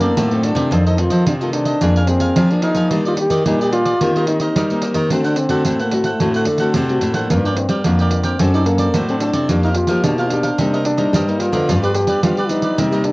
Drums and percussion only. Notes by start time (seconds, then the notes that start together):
0.00 pandeiro
0.17 pandeiro
0.31 pandeiro
0.43 pandeiro
0.56 pandeiro
0.72 pandeiro
0.87 pandeiro
0.98 pandeiro
1.10 pandeiro
1.27 pandeiro
1.41 pandeiro
1.53 pandeiro
1.65 pandeiro
1.81 pandeiro
1.96 pandeiro
2.07 pandeiro
2.20 pandeiro
2.36 pandeiro
2.51 pandeiro
2.62 pandeiro
2.75 pandeiro
2.91 pandeiro
3.05 pandeiro
3.17 pandeiro
3.30 pandeiro
3.46 pandeiro
3.61 pandeiro
3.73 pandeiro
3.85 pandeiro
4.01 pandeiro
4.16 pandeiro
4.27 pandeiro
4.40 pandeiro
4.56 pandeiro
4.70 pandeiro
4.82 pandeiro
4.94 pandeiro
5.10 pandeiro
5.24 pandeiro
5.36 pandeiro
5.49 pandeiro
5.65 pandeiro
5.79 pandeiro
5.91 pandeiro
6.04 pandeiro
6.20 pandeiro
6.34 pandeiro
6.45 pandeiro
6.58 pandeiro
6.74 pandeiro
6.89 pandeiro
7.01 pandeiro
7.14 pandeiro
7.30 pandeiro
7.45 pandeiro
7.57 pandeiro
7.69 pandeiro
7.84 pandeiro
7.99 pandeiro
8.11 pandeiro
8.24 pandeiro
8.39 pandeiro
8.54 pandeiro
8.66 pandeiro
8.78 pandeiro
8.94 pandeiro
9.09 pandeiro
9.20 pandeiro
9.33 pandeiro
9.49 pandeiro
9.63 pandeiro
9.74 pandeiro
9.87 pandeiro
10.04 pandeiro
10.18 pandeiro
10.30 pandeiro
10.43 pandeiro
10.59 pandeiro
10.74 pandeiro
10.85 pandeiro
10.98 pandeiro
11.14 pandeiro
11.29 pandeiro
11.40 pandeiro
11.53 pandeiro
11.69 pandeiro
11.84 pandeiro
11.94 pandeiro
12.07 pandeiro
12.23 pandeiro
12.37 pandeiro
12.49 pandeiro
12.62 pandeiro
12.78 pandeiro
12.93 pandeiro
13.04 pandeiro